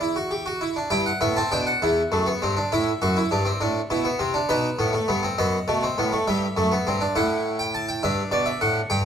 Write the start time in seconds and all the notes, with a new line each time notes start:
Already playing: E2 G5
0.01 E4
0.16 F#4
0.31 G4
0.46 F#4
0.61 E4
0.76 D4
0.90 G2 E4 G5
1.06 F#5
1.21 A2 B3 E5
1.36 C4 A5
1.52 B2 D4 G5
1.67 F#5
1.82 E2 E4
2.12 F#2 A3
2.27 B3
2.42 G2 C4
2.57 D4
2.72 A2 E4 E5
3.02 F#2 F#4
3.17 E4
3.31 G2 D4
3.45 C4
3.61 A2 D4
3.90 B2 E4
4.05 B3
4.19 C3 C4
4.34 D4
4.49 B2 D#4 B4
4.79 A2 B3
4.93 A3
5.08 G2 B3
5.23 C4
5.38 F#2 B3 D#5
5.68 B2 A3
5.83 C4
5.98 A2 B3
6.12 A3
6.27 G2 G3 E5
6.57 F#2 A3
6.72 B3
6.87 G2 C4
7.01 D4
7.16 A2 E4 F#5
7.59 G5
7.74 A5
7.89 G5
8.03 G2 D4 E5
8.31 B2 D5
8.46 E5
8.61 A2 F#5
8.90 G2 G5